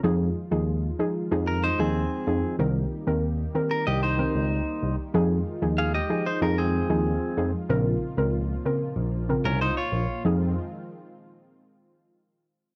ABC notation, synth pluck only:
X:1
M:4/4
L:1/16
Q:1/4=94
K:Fm
V:1 name="Synth pluck"
[F,EA]3 [F,EA]3 [F,EA]2 [F,EA]3 [F,EA]3 [F,EA]2 | [E,CB]3 [E,CB]3 [E,CB]2 z2 [E,CB] z4 z | [F,EA]3 [F,EA]3 [F,EA]2 [F,EA]3 [F,EA]3 [F,EA]2 | [D,CB]3 [D,CB]3 [D,CB]2 z2 [D,CB] z4 z |
[F,EA]2 z12 z2 |]